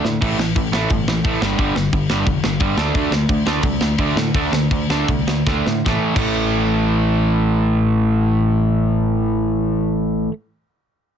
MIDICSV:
0, 0, Header, 1, 4, 480
1, 0, Start_track
1, 0, Tempo, 342466
1, 301, Time_signature, 4, 2, 24, 8
1, 5101, Tempo, 360577
1, 7021, Tempo, 399734
1, 14340, End_track
2, 0, Start_track
2, 0, Title_t, "Overdriven electric guitar"
2, 0, Program_c, 0, 29
2, 70, Note_on_c, 0, 50, 74
2, 75, Note_on_c, 0, 57, 84
2, 281, Note_off_c, 0, 50, 0
2, 284, Note_off_c, 0, 57, 0
2, 300, Note_on_c, 0, 45, 92
2, 306, Note_on_c, 0, 52, 99
2, 313, Note_on_c, 0, 57, 105
2, 526, Note_off_c, 0, 45, 0
2, 529, Note_off_c, 0, 52, 0
2, 533, Note_off_c, 0, 57, 0
2, 546, Note_on_c, 0, 45, 73
2, 549, Note_on_c, 0, 52, 84
2, 759, Note_off_c, 0, 45, 0
2, 761, Note_off_c, 0, 52, 0
2, 787, Note_on_c, 0, 45, 75
2, 793, Note_on_c, 0, 52, 86
2, 1000, Note_off_c, 0, 45, 0
2, 1003, Note_off_c, 0, 52, 0
2, 1036, Note_on_c, 0, 45, 93
2, 1044, Note_on_c, 0, 52, 92
2, 1051, Note_on_c, 0, 57, 96
2, 1254, Note_off_c, 0, 45, 0
2, 1258, Note_off_c, 0, 52, 0
2, 1261, Note_off_c, 0, 57, 0
2, 1279, Note_on_c, 0, 45, 79
2, 1286, Note_on_c, 0, 52, 86
2, 1485, Note_off_c, 0, 45, 0
2, 1489, Note_off_c, 0, 52, 0
2, 1514, Note_on_c, 0, 45, 70
2, 1519, Note_on_c, 0, 52, 74
2, 1723, Note_off_c, 0, 45, 0
2, 1726, Note_off_c, 0, 52, 0
2, 1741, Note_on_c, 0, 45, 96
2, 1754, Note_on_c, 0, 52, 97
2, 1758, Note_on_c, 0, 57, 111
2, 1966, Note_off_c, 0, 45, 0
2, 1972, Note_off_c, 0, 52, 0
2, 1974, Note_off_c, 0, 57, 0
2, 1990, Note_on_c, 0, 43, 100
2, 1994, Note_on_c, 0, 50, 100
2, 2001, Note_on_c, 0, 55, 102
2, 2201, Note_off_c, 0, 43, 0
2, 2212, Note_off_c, 0, 50, 0
2, 2216, Note_off_c, 0, 55, 0
2, 2218, Note_on_c, 0, 43, 88
2, 2228, Note_on_c, 0, 50, 92
2, 2237, Note_on_c, 0, 55, 115
2, 2444, Note_off_c, 0, 43, 0
2, 2449, Note_off_c, 0, 50, 0
2, 2453, Note_off_c, 0, 55, 0
2, 2467, Note_on_c, 0, 43, 72
2, 2474, Note_on_c, 0, 50, 86
2, 2679, Note_off_c, 0, 43, 0
2, 2682, Note_off_c, 0, 50, 0
2, 2706, Note_on_c, 0, 50, 90
2, 2708, Note_on_c, 0, 43, 85
2, 2918, Note_off_c, 0, 50, 0
2, 2919, Note_off_c, 0, 43, 0
2, 2945, Note_on_c, 0, 43, 86
2, 2951, Note_on_c, 0, 50, 94
2, 2958, Note_on_c, 0, 55, 94
2, 3167, Note_off_c, 0, 43, 0
2, 3170, Note_off_c, 0, 50, 0
2, 3174, Note_off_c, 0, 55, 0
2, 3183, Note_on_c, 0, 43, 73
2, 3187, Note_on_c, 0, 50, 89
2, 3396, Note_off_c, 0, 43, 0
2, 3398, Note_off_c, 0, 50, 0
2, 3413, Note_on_c, 0, 43, 75
2, 3424, Note_on_c, 0, 50, 80
2, 3623, Note_off_c, 0, 43, 0
2, 3633, Note_off_c, 0, 50, 0
2, 3640, Note_on_c, 0, 43, 101
2, 3650, Note_on_c, 0, 50, 97
2, 3655, Note_on_c, 0, 55, 125
2, 3862, Note_off_c, 0, 50, 0
2, 3874, Note_off_c, 0, 43, 0
2, 3878, Note_on_c, 0, 50, 93
2, 3881, Note_off_c, 0, 55, 0
2, 3889, Note_on_c, 0, 57, 91
2, 3897, Note_on_c, 0, 62, 108
2, 4106, Note_off_c, 0, 50, 0
2, 4112, Note_off_c, 0, 57, 0
2, 4122, Note_off_c, 0, 62, 0
2, 4122, Note_on_c, 0, 50, 91
2, 4129, Note_on_c, 0, 57, 102
2, 4136, Note_on_c, 0, 62, 97
2, 4341, Note_off_c, 0, 50, 0
2, 4348, Note_off_c, 0, 57, 0
2, 4358, Note_on_c, 0, 50, 73
2, 4362, Note_off_c, 0, 62, 0
2, 4364, Note_on_c, 0, 57, 74
2, 4584, Note_off_c, 0, 50, 0
2, 4587, Note_off_c, 0, 57, 0
2, 4611, Note_on_c, 0, 50, 85
2, 4612, Note_on_c, 0, 57, 95
2, 4831, Note_off_c, 0, 50, 0
2, 4832, Note_off_c, 0, 57, 0
2, 4847, Note_on_c, 0, 50, 84
2, 4853, Note_on_c, 0, 57, 96
2, 4865, Note_on_c, 0, 62, 103
2, 5081, Note_off_c, 0, 50, 0
2, 5084, Note_off_c, 0, 57, 0
2, 5090, Note_off_c, 0, 62, 0
2, 5108, Note_on_c, 0, 50, 83
2, 5110, Note_on_c, 0, 57, 89
2, 5313, Note_off_c, 0, 50, 0
2, 5314, Note_off_c, 0, 57, 0
2, 5335, Note_on_c, 0, 50, 77
2, 5341, Note_on_c, 0, 57, 83
2, 5545, Note_off_c, 0, 50, 0
2, 5547, Note_off_c, 0, 57, 0
2, 5572, Note_on_c, 0, 50, 97
2, 5578, Note_on_c, 0, 57, 111
2, 5580, Note_on_c, 0, 62, 115
2, 5791, Note_off_c, 0, 50, 0
2, 5794, Note_off_c, 0, 57, 0
2, 5795, Note_off_c, 0, 62, 0
2, 5815, Note_on_c, 0, 50, 64
2, 5823, Note_on_c, 0, 57, 79
2, 6023, Note_off_c, 0, 50, 0
2, 6027, Note_off_c, 0, 57, 0
2, 6047, Note_on_c, 0, 50, 89
2, 6054, Note_on_c, 0, 57, 97
2, 6062, Note_on_c, 0, 62, 103
2, 6270, Note_off_c, 0, 50, 0
2, 6273, Note_off_c, 0, 57, 0
2, 6277, Note_off_c, 0, 62, 0
2, 6291, Note_on_c, 0, 50, 79
2, 6296, Note_on_c, 0, 57, 80
2, 6505, Note_off_c, 0, 50, 0
2, 6507, Note_off_c, 0, 57, 0
2, 6534, Note_on_c, 0, 50, 78
2, 6536, Note_on_c, 0, 57, 88
2, 6750, Note_off_c, 0, 50, 0
2, 6751, Note_off_c, 0, 57, 0
2, 6779, Note_on_c, 0, 50, 87
2, 6781, Note_on_c, 0, 57, 86
2, 6793, Note_on_c, 0, 62, 94
2, 7009, Note_off_c, 0, 50, 0
2, 7010, Note_off_c, 0, 57, 0
2, 7016, Note_off_c, 0, 62, 0
2, 7028, Note_on_c, 0, 50, 82
2, 7031, Note_on_c, 0, 57, 77
2, 7229, Note_off_c, 0, 50, 0
2, 7230, Note_off_c, 0, 57, 0
2, 7256, Note_on_c, 0, 50, 68
2, 7258, Note_on_c, 0, 57, 77
2, 7460, Note_off_c, 0, 50, 0
2, 7461, Note_off_c, 0, 57, 0
2, 7486, Note_on_c, 0, 50, 95
2, 7495, Note_on_c, 0, 57, 95
2, 7497, Note_on_c, 0, 62, 104
2, 7704, Note_off_c, 0, 50, 0
2, 7708, Note_off_c, 0, 57, 0
2, 7709, Note_off_c, 0, 62, 0
2, 7718, Note_on_c, 0, 50, 68
2, 7724, Note_on_c, 0, 57, 87
2, 7931, Note_off_c, 0, 50, 0
2, 7934, Note_off_c, 0, 57, 0
2, 7940, Note_on_c, 0, 45, 105
2, 7966, Note_on_c, 0, 52, 100
2, 7987, Note_on_c, 0, 57, 105
2, 8293, Note_off_c, 0, 45, 0
2, 8298, Note_on_c, 0, 45, 100
2, 8319, Note_off_c, 0, 52, 0
2, 8324, Note_on_c, 0, 52, 96
2, 8341, Note_off_c, 0, 57, 0
2, 8346, Note_on_c, 0, 57, 90
2, 13273, Note_off_c, 0, 45, 0
2, 13299, Note_off_c, 0, 52, 0
2, 13322, Note_off_c, 0, 57, 0
2, 14340, End_track
3, 0, Start_track
3, 0, Title_t, "Picked electric bass"
3, 0, Program_c, 1, 34
3, 62, Note_on_c, 1, 45, 94
3, 241, Note_off_c, 1, 45, 0
3, 305, Note_on_c, 1, 33, 100
3, 483, Note_off_c, 1, 33, 0
3, 539, Note_on_c, 1, 33, 89
3, 719, Note_off_c, 1, 33, 0
3, 784, Note_on_c, 1, 33, 77
3, 962, Note_off_c, 1, 33, 0
3, 1025, Note_on_c, 1, 33, 82
3, 1202, Note_off_c, 1, 33, 0
3, 1268, Note_on_c, 1, 31, 92
3, 1445, Note_off_c, 1, 31, 0
3, 1496, Note_on_c, 1, 33, 85
3, 1677, Note_off_c, 1, 33, 0
3, 1748, Note_on_c, 1, 33, 96
3, 1924, Note_off_c, 1, 33, 0
3, 1973, Note_on_c, 1, 31, 91
3, 2155, Note_off_c, 1, 31, 0
3, 2230, Note_on_c, 1, 31, 96
3, 2405, Note_off_c, 1, 31, 0
3, 2456, Note_on_c, 1, 31, 96
3, 2637, Note_off_c, 1, 31, 0
3, 2707, Note_on_c, 1, 31, 87
3, 2883, Note_off_c, 1, 31, 0
3, 2944, Note_on_c, 1, 31, 88
3, 3121, Note_off_c, 1, 31, 0
3, 3175, Note_on_c, 1, 29, 98
3, 3355, Note_off_c, 1, 29, 0
3, 3421, Note_on_c, 1, 31, 91
3, 3599, Note_off_c, 1, 31, 0
3, 3650, Note_on_c, 1, 31, 90
3, 3832, Note_off_c, 1, 31, 0
3, 3883, Note_on_c, 1, 38, 102
3, 4067, Note_off_c, 1, 38, 0
3, 4126, Note_on_c, 1, 38, 107
3, 4309, Note_off_c, 1, 38, 0
3, 4360, Note_on_c, 1, 38, 95
3, 4546, Note_off_c, 1, 38, 0
3, 4608, Note_on_c, 1, 38, 87
3, 4792, Note_off_c, 1, 38, 0
3, 4851, Note_on_c, 1, 38, 91
3, 5035, Note_off_c, 1, 38, 0
3, 5087, Note_on_c, 1, 36, 99
3, 5266, Note_off_c, 1, 36, 0
3, 5324, Note_on_c, 1, 38, 79
3, 5502, Note_off_c, 1, 38, 0
3, 5566, Note_on_c, 1, 38, 92
3, 5742, Note_off_c, 1, 38, 0
3, 5788, Note_on_c, 1, 45, 94
3, 5971, Note_off_c, 1, 45, 0
3, 6037, Note_on_c, 1, 38, 101
3, 6218, Note_off_c, 1, 38, 0
3, 6277, Note_on_c, 1, 38, 92
3, 6461, Note_off_c, 1, 38, 0
3, 6524, Note_on_c, 1, 38, 85
3, 6708, Note_off_c, 1, 38, 0
3, 6772, Note_on_c, 1, 38, 85
3, 6958, Note_off_c, 1, 38, 0
3, 7024, Note_on_c, 1, 36, 92
3, 7193, Note_off_c, 1, 36, 0
3, 7252, Note_on_c, 1, 38, 80
3, 7424, Note_off_c, 1, 38, 0
3, 7482, Note_on_c, 1, 38, 88
3, 7657, Note_off_c, 1, 38, 0
3, 7722, Note_on_c, 1, 45, 95
3, 7898, Note_off_c, 1, 45, 0
3, 7954, Note_on_c, 1, 33, 97
3, 8089, Note_off_c, 1, 33, 0
3, 8317, Note_on_c, 1, 33, 86
3, 13245, Note_off_c, 1, 33, 0
3, 14340, End_track
4, 0, Start_track
4, 0, Title_t, "Drums"
4, 66, Note_on_c, 9, 38, 81
4, 207, Note_off_c, 9, 38, 0
4, 304, Note_on_c, 9, 49, 94
4, 308, Note_on_c, 9, 36, 108
4, 444, Note_off_c, 9, 49, 0
4, 448, Note_off_c, 9, 36, 0
4, 552, Note_on_c, 9, 38, 113
4, 692, Note_off_c, 9, 38, 0
4, 781, Note_on_c, 9, 49, 67
4, 786, Note_on_c, 9, 36, 118
4, 921, Note_off_c, 9, 49, 0
4, 926, Note_off_c, 9, 36, 0
4, 1028, Note_on_c, 9, 38, 110
4, 1168, Note_off_c, 9, 38, 0
4, 1257, Note_on_c, 9, 49, 60
4, 1268, Note_on_c, 9, 36, 112
4, 1397, Note_off_c, 9, 49, 0
4, 1408, Note_off_c, 9, 36, 0
4, 1513, Note_on_c, 9, 38, 104
4, 1654, Note_off_c, 9, 38, 0
4, 1744, Note_on_c, 9, 49, 62
4, 1748, Note_on_c, 9, 36, 126
4, 1884, Note_off_c, 9, 49, 0
4, 1888, Note_off_c, 9, 36, 0
4, 1992, Note_on_c, 9, 38, 106
4, 2132, Note_off_c, 9, 38, 0
4, 2221, Note_on_c, 9, 49, 53
4, 2226, Note_on_c, 9, 36, 103
4, 2361, Note_off_c, 9, 49, 0
4, 2366, Note_off_c, 9, 36, 0
4, 2468, Note_on_c, 9, 38, 107
4, 2608, Note_off_c, 9, 38, 0
4, 2701, Note_on_c, 9, 49, 59
4, 2705, Note_on_c, 9, 36, 107
4, 2841, Note_off_c, 9, 49, 0
4, 2845, Note_off_c, 9, 36, 0
4, 2938, Note_on_c, 9, 38, 104
4, 3079, Note_off_c, 9, 38, 0
4, 3172, Note_on_c, 9, 49, 57
4, 3177, Note_on_c, 9, 36, 123
4, 3312, Note_off_c, 9, 49, 0
4, 3317, Note_off_c, 9, 36, 0
4, 3416, Note_on_c, 9, 38, 109
4, 3556, Note_off_c, 9, 38, 0
4, 3641, Note_on_c, 9, 49, 59
4, 3652, Note_on_c, 9, 36, 117
4, 3781, Note_off_c, 9, 49, 0
4, 3792, Note_off_c, 9, 36, 0
4, 3891, Note_on_c, 9, 38, 109
4, 4031, Note_off_c, 9, 38, 0
4, 4134, Note_on_c, 9, 36, 97
4, 4135, Note_on_c, 9, 49, 62
4, 4274, Note_off_c, 9, 36, 0
4, 4275, Note_off_c, 9, 49, 0
4, 4376, Note_on_c, 9, 38, 111
4, 4517, Note_off_c, 9, 38, 0
4, 4614, Note_on_c, 9, 36, 119
4, 4614, Note_on_c, 9, 49, 60
4, 4754, Note_off_c, 9, 36, 0
4, 4754, Note_off_c, 9, 49, 0
4, 4859, Note_on_c, 9, 38, 110
4, 4999, Note_off_c, 9, 38, 0
4, 5085, Note_on_c, 9, 49, 68
4, 5093, Note_on_c, 9, 36, 119
4, 5219, Note_off_c, 9, 49, 0
4, 5226, Note_off_c, 9, 36, 0
4, 5326, Note_on_c, 9, 38, 105
4, 5459, Note_off_c, 9, 38, 0
4, 5555, Note_on_c, 9, 49, 69
4, 5563, Note_on_c, 9, 36, 114
4, 5688, Note_off_c, 9, 49, 0
4, 5696, Note_off_c, 9, 36, 0
4, 5810, Note_on_c, 9, 38, 115
4, 5943, Note_off_c, 9, 38, 0
4, 6038, Note_on_c, 9, 49, 57
4, 6040, Note_on_c, 9, 36, 104
4, 6171, Note_off_c, 9, 49, 0
4, 6174, Note_off_c, 9, 36, 0
4, 6286, Note_on_c, 9, 38, 112
4, 6419, Note_off_c, 9, 38, 0
4, 6523, Note_on_c, 9, 49, 60
4, 6527, Note_on_c, 9, 36, 109
4, 6656, Note_off_c, 9, 49, 0
4, 6660, Note_off_c, 9, 36, 0
4, 6782, Note_on_c, 9, 38, 114
4, 6915, Note_off_c, 9, 38, 0
4, 7024, Note_on_c, 9, 36, 106
4, 7025, Note_on_c, 9, 49, 58
4, 7144, Note_off_c, 9, 36, 0
4, 7145, Note_off_c, 9, 49, 0
4, 7256, Note_on_c, 9, 38, 115
4, 7376, Note_off_c, 9, 38, 0
4, 7482, Note_on_c, 9, 36, 118
4, 7490, Note_on_c, 9, 38, 68
4, 7602, Note_off_c, 9, 36, 0
4, 7610, Note_off_c, 9, 38, 0
4, 7720, Note_on_c, 9, 38, 90
4, 7840, Note_off_c, 9, 38, 0
4, 7957, Note_on_c, 9, 36, 97
4, 7962, Note_on_c, 9, 38, 81
4, 8077, Note_off_c, 9, 36, 0
4, 8082, Note_off_c, 9, 38, 0
4, 8316, Note_on_c, 9, 36, 106
4, 8319, Note_on_c, 9, 57, 85
4, 8436, Note_off_c, 9, 36, 0
4, 8439, Note_off_c, 9, 57, 0
4, 14340, End_track
0, 0, End_of_file